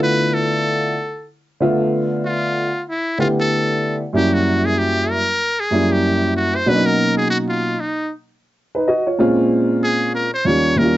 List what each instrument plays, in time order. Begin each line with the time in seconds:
Already playing: grand piano D3 A3 B3 E4 F4
0.03 muted trumpet B4
0.34 muted trumpet A4
1.60 grand piano D3 A3 B3 F4 E5
2.25 muted trumpet F4
2.89 muted trumpet E4
3.18 grand piano D3 A3 B3 E4 G4, muted trumpet F4
3.40 muted trumpet A4
4.13 grand piano F#2 G3 A#3 C#4 E4, muted trumpet G4
4.34 muted trumpet F#4
4.66 muted trumpet G#4
4.79 muted trumpet G4
5.11 muted trumpet A#4
5.61 muted trumpet G#4
5.71 grand piano F#2 G3 A#3 C#4 E4
5.93 muted trumpet G4
6.37 muted trumpet F#4
6.56 muted trumpet C5
6.66 grand piano B2 F#3 A#3 C#4 D4, muted trumpet B4
6.74 grand piano D#4
6.86 muted trumpet A#4
7.17 muted trumpet G#4
7.30 muted trumpet F#4
7.49 muted trumpet F4
7.80 muted trumpet D#4
8.75 grand piano D#4 B4
8.88 grand piano F#4 D#5
9.07 grand piano F4 C#5
9.19 grand piano A#2 G#3 C4 C#4 F4
9.84 muted trumpet G#4
10.15 muted trumpet A#4
10.34 muted trumpet C5
10.45 grand piano D#2 G3 A#3 C#4 F4, muted trumpet C#5
10.76 grand piano D#2 G3 A#3 C#4 E4, muted trumpet A#4
10.85 grand piano F4